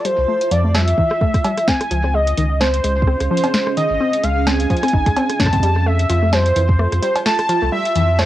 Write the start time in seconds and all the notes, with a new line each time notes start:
Already playing: F4 E5 A5
0.05 G3 C5, closed hi-hat
0.18 C2
0.28 A3
0.41 closed hi-hat
0.51 F2 F3 D5, closed hi-hat
0.64 A3
0.75 G3 E5, snare, cowbell
0.88 closed hi-hat
0.98 E3, kick
1.11 cross-stick
1.21 A3, kick
1.34 kick, cross-stick, closed hi-hat
1.44 G3, closed hi-hat, cowbell
1.57 cross-stick, closed hi-hat
1.68 C4 C#4 G#5, kick, snare
1.81 cross-stick, closed hi-hat
1.90 C#2 F3 G#4 D#5, closed hi-hat
2.02 C4 F5, cross-stick
2.14 G#3 D#5
2.27 closed hi-hat
2.37 C#2 D#3, closed hi-hat
2.61 C4 C5, snare, cowbell
2.74 closed hi-hat
2.84 C#2 G#3, closed hi-hat
3.02 kick
3.07 C4, cross-stick
3.20 C#2, cross-stick, closed hi-hat
3.30 F3 C5
3.37 closed hi-hat
3.43 C4, closed hi-hat, cowbell
3.54 G#3, snare
3.67 cross-stick
3.77 D#3 D#5, closed hi-hat
3.90 G#1
4.00 C4
4.13 closed hi-hat
4.23 C#2 G#3 F5, closed hi-hat
4.47 C4 G#5, snare, cowbell
4.60 closed hi-hat
4.70 F3, kick, closed hi-hat
4.76 closed hi-hat
4.83 C4, cross-stick, closed hi-hat
4.88 closed hi-hat
4.93 G#1 D#4, kick
5.06 C#2 G#3, kick, cross-stick, closed hi-hat
5.16 C4, closed hi-hat, cowbell
5.30 cross-stick, closed hi-hat
5.40 C#4 A5, kick, snare
5.44 kick, cross-stick
5.48 kick
5.53 C4, kick, closed hi-hat
5.55 kick
5.60 F2 G3 F4, kick, closed hi-hat
5.76 cross-stick
5.83 A3 E5 G5
5.99 closed hi-hat
6.09 F2 F3 A5, closed hi-hat
6.23 A3
6.28 E5
6.33 G3 C5, snare, cowbell
6.46 closed hi-hat
6.56 F2 E3, closed hi-hat
6.69 kick
6.79 A3, cross-stick
6.92 F2, cross-stick, closed hi-hat
7.03 G3 C5, closed hi-hat
7.16 closed hi-hat, cowbell
7.26 A3 A5, snare
7.39 cross-stick, closed hi-hat
7.49 F3, closed hi-hat
7.62 C2 A3
7.72 G3 E5
7.85 closed hi-hat
7.96 F2 E3, closed hi-hat
8.19 A3 C5, snare, cowbell